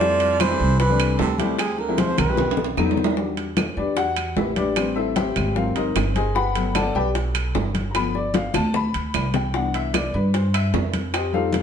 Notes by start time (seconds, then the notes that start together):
Already playing: F2 F3 D5
0.01 G3 A3 C4 E4, high bongo, high conga
0.20 high conga, high timbale
0.40 E3 C5, high bongo, high conga, high timbale, low timbale, claves
0.50 G3 A3 C4 E4
0.60 C2, high conga
0.79 E3 B4, high bongo, high conga, high timbale
0.90 G3 A3 C4 D4
0.99 high conga, high timbale, claves
1.19 D2 C3 A4, high bongo, low bongo, high conga, low timbale
1.38 B2 G3 A3 C4 E4 G4, high conga, high timbale
1.58 C3 G#4, high bongo, high conga, high timbale, claves
1.78 D3 A#4, high bongo, high conga
1.88 F3 G#3 C4 E4
1.98 F3 C5, high bongo, high conga, high timbale, low timbale
2.18 B1 D#3 B4, high bongo, low conga, high timbale, claves
2.28 F3 G#3 C4 G4
2.37 high bongo, high conga, low conga, high timbale
2.51 high timbale
2.57 low bongo, high conga
2.64 high timbale
2.77 E2 F#3 A3 B3 D#4, low bongo, high conga, low timbale, claves
2.91 low timbale
2.97 low bongo
3.04 low timbale
3.17 G3 D4 F#4, high bongo, high conga
3.37 high conga, high timbale
3.57 high bongo, high conga, high timbale, low timbale, claves
3.77 E2 D4 G4 B4 D5, high conga
3.97 F#4 F#5, high bongo, high conga, high timbale
4.17 high conga, high timbale, claves
4.36 A1 E4 G4 B4 E5, high bongo, low bongo, high conga, low timbale
4.56 D4 G4 B4 D5, high conga, high timbale
4.76 G3 C4 B4, high bongo, high conga, high timbale, claves
4.96 E4 A4 C5 E5, high bongo, high conga
5.16 G4 C5 E5 G5, high bongo, high conga, high timbale, low timbale
5.36 G#1, high bongo, low conga, high timbale, claves
5.55 F#3 A#3 C4 F4 F5, high bongo, high conga
5.76 G#1 D#4 A#4 C5 D#5, high conga, high timbale
5.96 G1, high bongo, low bongo, high conga, high timbale, low timbale, claves
6.15 G#4 C5 D#5 G#5, high bongo, high conga, high timbale
6.35 B4 F#5 G5 B5, high bongo, high conga
6.55 F#3 A3 B3, high conga, high timbale
6.75 A4 D5 F#5 A5, high bongo, high conga, high timbale, low timbale, claves
6.95 B1 G4 B4 D5 G5, high conga
7.15 high bongo, high conga, high timbale
7.35 high conga, high timbale, claves
7.55 G1, high bongo, low bongo, high conga, low timbale
7.75 high conga, high timbale
7.91 F3 A3 A#5, high bongo, high conga, high timbale
7.95 B3 B5, claves
8.14 D5, high bongo, high conga
8.34 F5, high bongo, high conga, high timbale, low timbale
8.54 D2 A5, high bongo, low conga, high timbale, claves
8.74 B5, low bongo, high conga
8.94 D2, high conga, high timbale
9.14 C2, high conga, high timbale, low timbale, claves
9.34 G5, low bongo, high timbale
9.54 E3 B3 D4 F#5, high bongo, high conga
9.74 E5, high conga, high timbale
9.94 D5, high bongo, high conga, high timbale, low timbale, claves
10.14 G2 B4, high conga
10.34 C5, high bongo, high conga, high timbale
10.54 E5, high conga, high timbale, claves
10.73 F2, high bongo, low bongo, high conga, low timbale
10.94 high conga, high timbale
11.13 G4 C5 D#5 G5, high bongo, high conga, high timbale, claves
11.33 G3 A3 D#4 F4 A4 C5 F5, high bongo, high conga
11.53 high bongo, high conga, high timbale, low timbale